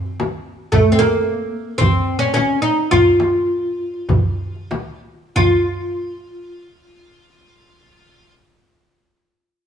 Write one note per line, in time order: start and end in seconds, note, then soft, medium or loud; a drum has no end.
0.00 0.15 C4 medium
0.06 darbuka ka soft
0.20 darbuka tek medium
0.20 frame drum medium
0.46 darbuka ka soft
0.72 0.92 A3 medium
0.72 darbuka dum medium
0.72 frame drum medium
0.92 0.99 C4 medium
0.99 1.82 A#3 medium
0.99 darbuka tek medium
0.99 frame drum medium
1.78 2.19 C4 medium
1.78 darbuka dum medium
1.78 frame drum medium
2.19 2.33 C#4 medium
2.19 darbuka ka soft
2.34 2.62 C#4 medium
2.34 darbuka tek medium
2.34 frame drum medium
2.62 2.91 D#4 medium
2.62 darbuka ka soft
2.91 4.99 F4 medium
2.91 darbuka dum medium
2.91 frame drum medium
3.20 darbuka tek medium
3.20 frame drum medium
3.35 darbuka ka soft
3.78 darbuka ka soft
3.94 darbuka ka soft
4.09 darbuka dum medium
4.09 frame drum medium
4.56 darbuka ka soft
4.71 darbuka tek medium
4.71 frame drum medium
5.36 8.33 F4 medium
5.36 darbuka dum medium
5.36 frame drum medium